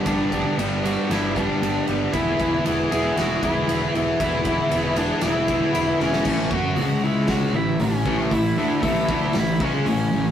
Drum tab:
CC |----------------|----------------|----------------|x---------------|
RD |x-x-x-x-x-x-x-x-|x-x-x-x-x-x-x-x-|x-x-x-x-x-x-x---|----------------|
HH |----------------|----------------|----------------|----o---o---o---|
SD |--------o-------|--------o-------|--------o-----oo|--------o-------|
BD |o-o-------o-----|o-o-------o-----|o-o-------o-----|o-o-----o-----o-|

CC |----------------|
RD |----------------|
HH |o---o---o---o---|
SD |--------o-------|
BD |o---o-o---o-----|